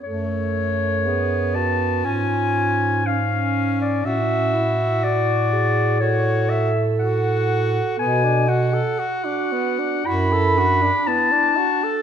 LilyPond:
<<
  \new Staff \with { instrumentName = "Clarinet" } { \time 4/4 \key fis \minor \tempo 4 = 60 cis''4. a''8 gis''4 eis''8. d''16 | e''4 d''4 cis''8 e''16 r16 fis''4 | gis''8 fis''4. b''4 a''4 | }
  \new Staff \with { instrumentName = "Clarinet" } { \time 4/4 \key fis \minor a'4 gis'8 fis'8 eis'4 cis'4 | cis'8 e'8 fis'8 gis'8 a'2~ | a'8 r8 fis'4 e'8 d'8 e'8 d'8 | }
  \new Staff \with { instrumentName = "Tenor saxophone" } { \time 4/4 \key fis \minor a4 b4 cis'4 cis'4 | fis'2 fis'8. r16 fis'4 | b16 d'16 fis'16 a'16 fis'16 d'16 b16 d'16 fis'16 a'16 fis'16 d'16 b16 d'16 fis'16 a'16 | }
  \new Staff \with { instrumentName = "Bass clarinet" } { \clef bass \time 4/4 \key fis \minor fis,2 gis,2 | a,1 | b,4 r4 fis,4 r4 | }
>>